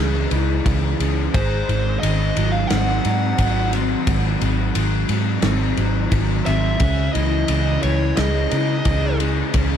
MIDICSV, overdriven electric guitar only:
0, 0, Header, 1, 2, 480
1, 0, Start_track
1, 0, Tempo, 684151
1, 936, Time_signature, 4, 2, 24, 8
1, 6855, End_track
2, 0, Start_track
2, 0, Title_t, "Overdriven electric guitar"
2, 0, Program_c, 0, 29
2, 0, Note_on_c, 0, 49, 72
2, 0, Note_on_c, 0, 52, 61
2, 0, Note_on_c, 0, 56, 65
2, 206, Note_off_c, 0, 52, 0
2, 215, Note_on_c, 0, 52, 63
2, 444, Note_off_c, 0, 49, 0
2, 453, Note_on_c, 0, 49, 71
2, 693, Note_off_c, 0, 56, 0
2, 696, Note_on_c, 0, 56, 69
2, 929, Note_on_c, 0, 44, 69
2, 934, Note_off_c, 0, 49, 0
2, 935, Note_off_c, 0, 52, 0
2, 1180, Note_on_c, 0, 51, 62
2, 1404, Note_off_c, 0, 51, 0
2, 1413, Note_on_c, 0, 51, 78
2, 1655, Note_on_c, 0, 54, 66
2, 1676, Note_off_c, 0, 56, 0
2, 1898, Note_on_c, 0, 60, 64
2, 2131, Note_off_c, 0, 44, 0
2, 2136, Note_off_c, 0, 54, 0
2, 2144, Note_on_c, 0, 54, 62
2, 2377, Note_off_c, 0, 51, 0
2, 2385, Note_on_c, 0, 51, 64
2, 2605, Note_off_c, 0, 60, 0
2, 2613, Note_on_c, 0, 60, 71
2, 2859, Note_on_c, 0, 44, 65
2, 3090, Note_off_c, 0, 51, 0
2, 3099, Note_on_c, 0, 51, 67
2, 3325, Note_off_c, 0, 51, 0
2, 3334, Note_on_c, 0, 51, 70
2, 3339, Note_off_c, 0, 54, 0
2, 3573, Note_on_c, 0, 54, 61
2, 3801, Note_off_c, 0, 60, 0
2, 3809, Note_on_c, 0, 60, 59
2, 4041, Note_off_c, 0, 54, 0
2, 4049, Note_on_c, 0, 54, 58
2, 4057, Note_off_c, 0, 44, 0
2, 4277, Note_off_c, 0, 51, 0
2, 4286, Note_on_c, 0, 51, 69
2, 4524, Note_off_c, 0, 60, 0
2, 4533, Note_on_c, 0, 60, 70
2, 4764, Note_off_c, 0, 51, 0
2, 4767, Note_on_c, 0, 49, 63
2, 4773, Note_off_c, 0, 54, 0
2, 4774, Note_off_c, 0, 60, 0
2, 5014, Note_on_c, 0, 52, 71
2, 5245, Note_off_c, 0, 49, 0
2, 5254, Note_on_c, 0, 49, 70
2, 5491, Note_off_c, 0, 52, 0
2, 5499, Note_on_c, 0, 52, 54
2, 5738, Note_on_c, 0, 56, 64
2, 5973, Note_off_c, 0, 52, 0
2, 5981, Note_on_c, 0, 52, 63
2, 6214, Note_off_c, 0, 49, 0
2, 6223, Note_on_c, 0, 49, 64
2, 6447, Note_off_c, 0, 56, 0
2, 6455, Note_on_c, 0, 56, 70
2, 6685, Note_off_c, 0, 49, 0
2, 6693, Note_on_c, 0, 49, 59
2, 6855, Note_off_c, 0, 49, 0
2, 6855, Note_off_c, 0, 52, 0
2, 6855, Note_off_c, 0, 56, 0
2, 6855, End_track
0, 0, End_of_file